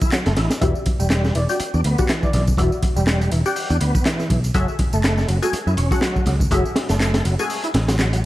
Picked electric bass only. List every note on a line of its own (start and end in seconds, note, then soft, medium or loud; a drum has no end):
0.27 0.34 F#1 medium
0.37 0.47 A1 loud
0.62 0.72 E1 loud
1.00 1.30 E1 medium
1.35 1.45 E1 medium
1.60 muted picked electric bass stroke soft
1.74 1.82 E2 medium
1.85 1.95 D2 medium
2.34 2.52 B1 medium
2.58 2.68 E1 loud
2.97 3.27 E1 medium
3.32 3.42 E1 medium
3.70 3.78 E2 medium
3.81 3.91 D2 loud
4.30 4.49 B1 loud
4.55 4.65 F#1 loud
4.93 5.24 F#1 medium
5.28 5.39 F#1 medium
5.53 muted picked electric bass stroke soft
5.67 5.75 F#2 medium
5.77 5.88 E1 medium
6.27 6.45 C#2 loud
6.51 6.61 F#1 loud
6.90 7.21 F#1 medium
7.25 7.35 F#1 medium
7.74 8.25 A1 loud